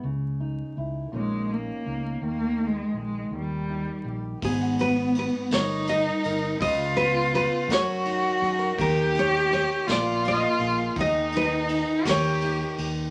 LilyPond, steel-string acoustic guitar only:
\new Staff \with { instrumentName = "Steel-string acoustic guitar" } { \time 6/8 \key dis \phrygian \tempo 4. = 55 << { r8 dis'8 e'8 <ais cis' dis' cis''>8 cis'8 dis'8~ | dis'8 dis'8 gis'8 r8 dis'8 g'8 | dis'16 fis'16 b8 fis'8 ais'8 g'8 ais'8 | b'8 b8 eis'8 ais'8 dis'8 gis'16 ais'16 |
g'8 dis'8 g'8 <ais eis' gis'>8 eis'8 gis'8 | gis'8 dis'8 gis'8 ais'8 dis'8 g'8 | } \\ { cis4. ais,4. | dis4. dis4. | gis,4. g4. | cis4. fis4. |
dis4. ais,4. | dis4. dis4. | } >> }